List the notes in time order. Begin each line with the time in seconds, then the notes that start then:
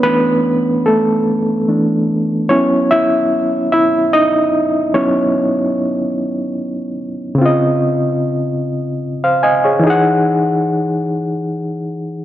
Already playing: B3 C#4 B4 C#5
0.03 E3 A3 B3 D4 B4
0.86 A3 A4
1.68 E3 A3 D4
2.49 F#3 B3 C#4 E4 C#5
2.91 E4 E5
3.72 E4 E5
4.13 D#4 D#5
4.94 F#3 B3 C#4 E4 C#5
7.35 C#3 C4
7.42 F4 D#5
9.24 C5 F5
9.43 D#5 G#5
9.64 G#4 C#5
9.80 E3
9.84 D#4 G#4
9.90 F#5